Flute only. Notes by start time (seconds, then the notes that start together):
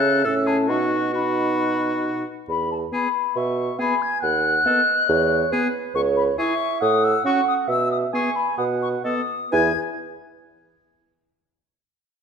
Already playing: F#6
0.25 E6
0.47 A5
0.69 C#6
1.15 B5
2.49 B5
2.71 A5
2.93 B5
3.36 C#6
3.80 B5
4.01 G#6
4.22 F#6
5.95 C#6
6.16 B5
6.38 C#6
6.81 D#6
7.04 E6
7.26 C#6
7.47 D#6
7.69 E6
7.91 D#6
8.14 C#6
8.35 B5
8.57 D#6
8.82 C#6
9.05 D#6
9.54 G#6